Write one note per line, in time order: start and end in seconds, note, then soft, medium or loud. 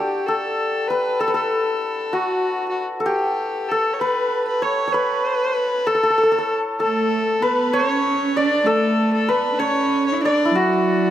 0.00 2.76 D4 medium
0.00 0.27 G4 medium
0.00 2.19 G4 medium
0.00 0.28 A4 soft
0.00 0.28 D5 medium
0.26 0.90 A4 medium
0.26 1.20 A4 medium
0.88 1.21 B4 medium
0.88 1.27 B4 medium
1.20 1.34 A4 medium
1.28 4.01 B4 medium
1.34 3.00 A4 medium
1.34 2.16 A4 medium
2.13 3.12 F#4 medium
2.13 2.68 F#4 medium
2.69 2.83 F#4 medium
3.00 3.71 A4 medium
3.06 6.20 G4 medium
3.06 3.70 G4 medium
3.69 3.95 A4 medium
3.69 5.86 A4 medium
3.93 4.01 C#5 medium
4.00 4.47 B4 medium
4.00 4.94 B4 medium
4.48 4.64 B4 medium
4.62 4.87 C#5 medium
4.62 4.94 C#5 medium
4.87 7.43 C#5 medium
4.92 5.88 B4 medium
4.92 7.42 B4 medium
5.87 6.57 A4 medium
5.87 5.94 A4 medium
5.95 6.03 A4 medium
6.03 6.10 A4 medium
6.10 6.17 A4 medium
6.18 6.23 A4 medium
6.23 6.31 A4 medium
6.32 6.38 A4 medium
6.38 6.79 A4 medium
6.80 7.39 A3 medium
6.80 8.66 A4 medium
6.80 7.44 A4 medium
7.42 7.74 B3 medium
7.42 9.28 B4 medium
7.42 7.75 B4 medium
7.73 8.36 C#4 medium
7.73 8.43 C#5 loud
7.73 8.38 C#5 medium
8.35 8.67 D4 medium
8.35 9.66 D5 medium
8.35 8.69 D5 medium
8.66 9.29 A3 medium
8.66 11.10 A4 medium
8.66 9.13 A4 medium
9.14 9.31 A4 medium
9.28 9.53 B3 medium
9.28 11.10 B4 medium
9.28 9.60 B4 medium
9.53 9.60 D4 medium
9.59 10.15 C#4 medium
9.59 10.06 C#5 medium
9.59 10.31 C#5 loud
10.07 10.21 C#5 medium
10.14 10.22 E4 medium
10.21 10.53 D4 medium
10.21 10.57 D5 medium
10.25 11.10 D5 medium
10.45 11.10 E4 medium
10.50 11.10 F#3 medium
10.55 11.10 F#4 medium